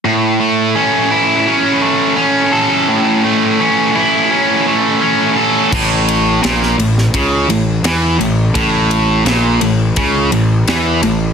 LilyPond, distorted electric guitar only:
\new Staff \with { instrumentName = "Distorted electric guitar" } { \clef bass \time 4/4 \key a \major \tempo 4 = 85 a,8 a8 cis'8 e'8 cis'8 a8 cis'8 a'8 | a,8 a8 cis'8 e'8 cis'8 a8 cis'8 a'8 | a,4 bes,8 a,8 cis8 a,8 e8 a,8 | a,4 bes,8 a,8 cis8 a,8 e8 a,8 | }